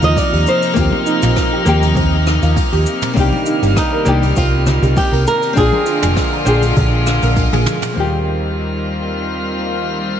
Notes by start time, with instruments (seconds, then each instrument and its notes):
Already playing: string section C3 F3 A#3 D#4, synth texture F6
0.02 fingered electric bass D#2, synth pluck F4, nylon-string guitar D#5, open hi-hat, low conga, cabasa
0.16 nylon-string guitar D5, kick, open hi-hat, high conga, cabasa
0.33 fingered electric bass D#2, synth pluck G4, open hi-hat
0.47 nylon-string guitar C5, cabasa
0.62 open hi-hat, cabasa
0.74 fingered electric bass D#2, nylon-string guitar A#3 C4, synth pluck C4, kick, open hi-hat, cabasa
0.78 nylon-string guitar F4 G4
0.92 high conga
1.06 synth pluck D#4, cabasa
1.22 fingered electric bass A#1, synth pluck F4, mid tom, open hi-hat, cabasa
1.36 kick, cross-stick, open hi-hat, cabasa
1.53 synth pluck G4
1.65 fingered electric bass D#2, nylon-string guitar A#3 C4 F4 G4, cabasa
1.82 open hi-hat, high conga, cabasa
1.95 fingered electric bass D#2, synth pluck C4, kick, open hi-hat, low conga, cabasa
2.26 synth pluck D#4, cross-stick, cabasa
2.42 fingered electric bass D#2, synth pluck F4, open hi-hat, cabasa
2.57 kick, open hi-hat, high conga, cabasa
2.73 fingered electric bass D#2, synth pluck G4, open hi-hat
2.86 cabasa
3.02 mid tom, open hi-hat, cabasa
3.13 fingered electric bass C2, string section D#3 G3, nylon-string guitar A#3 D4, synth pluck C4, kick, open hi-hat, cabasa
3.18 nylon-string guitar D#4 G4
3.33 high conga
3.46 synth pluck D#4, cabasa
3.62 fingered electric bass G1, synth pluck G4, open hi-hat, cabasa
3.76 nylon-string guitar D#4, kick, cross-stick, open hi-hat, cabasa
3.92 synth pluck A#4
4.05 fingered electric bass C2, nylon-string guitar A#3 D4 D#4 G4, cabasa
4.22 open hi-hat, high conga, cabasa
4.36 fingered electric bass C2, synth pluck C4, nylon-string guitar F4, kick, open hi-hat, cabasa
4.66 synth pluck D#4, cross-stick, low conga, cabasa
4.82 fingered electric bass C2, synth pluck G4, open hi-hat, low conga, cabasa
4.96 nylon-string guitar G4, kick, open hi-hat, high conga, cabasa
5.12 fingered electric bass C2, synth pluck A#4, open hi-hat
5.27 nylon-string guitar A#4, cabasa
5.42 open hi-hat, cabasa
5.53 fingered electric bass A#1, string section D3 F3 G#3 F4, nylon-string guitar C4 D4, synth pluck D4, kick, open hi-hat, cabasa
5.57 nylon-string guitar F4 G#4
5.73 high conga
5.86 synth pluck F4, open hi-hat, cabasa
6.02 fingered electric bass F1, synth pluck G#4, mid tom, open hi-hat, cabasa
6.16 kick, cross-stick, open hi-hat, cabasa
6.33 synth pluck A#4, open hi-hat
6.45 fingered electric bass A#1, nylon-string guitar C4 D4 F4 G#4, cabasa
6.62 open hi-hat, high conga, cabasa
6.76 fingered electric bass A#1, synth pluck D4, kick, open hi-hat, low conga, cabasa
7.07 synth pluck D4, cross-stick, cabasa
7.22 fingered electric bass A#1, synth pluck A#4, open hi-hat, cabasa
7.36 kick, open hi-hat, high conga, cabasa
7.53 fingered electric bass A#1, synth pluck G#4, open hi-hat, high tom
7.66 mid tom, cabasa
7.82 mid tom, open hi-hat, cabasa
7.93 fingered electric bass D#2, string section D#3 G3 A#3 C4 F4, nylon-string guitar A#3 C4, synth texture F6
7.98 nylon-string guitar F4 G4